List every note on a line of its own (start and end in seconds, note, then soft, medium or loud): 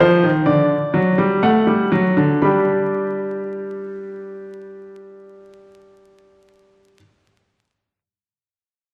0.00 0.22 F3 medium
0.00 0.29 C5 medium
0.23 0.46 D#3 medium
0.46 0.75 D3 medium
0.46 1.39 D5 medium
0.94 1.17 F#3 medium
1.18 1.42 G3 medium
1.43 1.66 A3 medium
1.43 2.40 F#5 medium
1.67 1.91 G3 medium
1.92 2.16 F#3 medium
2.17 2.42 D3 medium
2.42 6.94 G3 medium
2.42 6.97 D4 medium
2.42 6.97 G4 medium
2.42 6.94 B5 medium